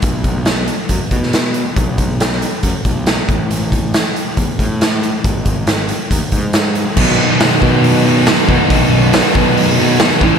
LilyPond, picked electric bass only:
\new Staff \with { instrumentName = "Picked electric bass" } { \clef bass \time 4/4 \key b \mixolydian \tempo 4 = 138 b,,2 fis,16 r16 b,4. | b,,2 fis,16 r16 b,,4 a,,8~ | a,,4. r8 e,16 r16 a,4. | gis,,2 dis,16 r16 gis,4. |
b,,8 r4 b,2 b,16 r16 | b,,4. b,2 a,,8 | }